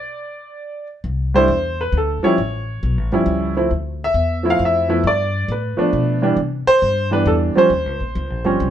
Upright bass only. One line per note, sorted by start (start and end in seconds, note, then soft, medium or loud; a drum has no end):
1.04 1.47 C2 medium
1.48 1.92 E2 medium
1.92 2.20 D2 medium
2.23 muted upright bass stroke soft
2.38 2.81 A1 medium
2.83 2.97 B1 medium
2.97 3.11 A1 medium
3.12 3.25 G1 medium
3.26 3.69 C#2 medium
3.71 4.14 D2 medium
4.14 4.58 E2 medium
4.59 5.02 F2 medium
5.04 5.47 G2 medium
5.48 5.76 A2 medium
5.78 muted upright bass stroke soft
5.93 6.36 B2 medium
6.37 6.64 C3 medium
6.67 muted upright bass stroke soft
6.82 7.25 G2 medium
7.26 7.53 E2 medium
7.56 muted upright bass stroke soft
7.70 7.86 D#2 medium
7.86 8.00 C#2 medium
8.00 8.14 A#1 medium
8.15 8.30 C#2 loud
8.30 8.44 A#1 medium
8.44 8.58 G1 medium
8.60 8.70 C2 medium